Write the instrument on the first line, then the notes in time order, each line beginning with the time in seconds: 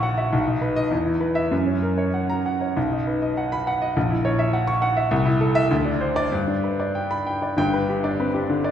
grand piano
Already playing: A#1 E4 C#5 E5 F#5 C#6
0.03 F#5
0.18 E5
0.33 B1
0.47 D#4
0.62 B4
0.76 D#5
0.91 E2
1.06 E4
1.21 B4
1.35 E5
1.51 F#2
1.67 C#4
1.82 A#4
1.98 C#5
2.14 F#5
2.29 A#5
2.46 F#5
2.61 C#5
2.77 B1
2.92 D#4
3.07 B4
3.22 D#5
3.37 F#5
3.52 B5
3.67 F#5
3.82 D#5
3.96 A#1
4.10 E4
4.25 C#5
4.39 E5
4.53 F#5
4.67 C#6
4.82 F#5
4.97 E5
5.11 C2
5.26 E4
5.41 A4
5.55 E5
5.71 D2
5.85 D4
6.01 C5
6.16 D5
6.32 G2
6.48 D4
6.64 B4
6.80 D5
6.95 G5
7.11 B5
7.26 G5
7.42 D5
7.57 G1 G2 G5
7.73 B4
7.89 G4
8.04 D4 D5
8.20 C4 B4
8.34 D4 G4
8.50 D3
8.64 D5